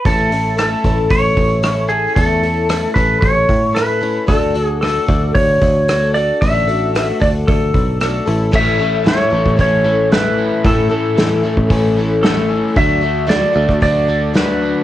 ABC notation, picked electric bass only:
X:1
M:4/4
L:1/16
Q:1/4=113
K:A
V:1 name="Picked electric bass" clef=bass
A,,,6 A,,,2 A,,,2 A,,,6 | E,,6 A,,,2 A,,,2 A,,6 | D,,6 D,,2 D,,2 D,,6 | A,,,6 D,,2 D,,2 B,,,4 A,,,2 |
A,,,6 A,,, A,,, A,,,8 | A,,2 z4 z A,,, A,,,8 | D,,6 D,, D,, D,,8 |]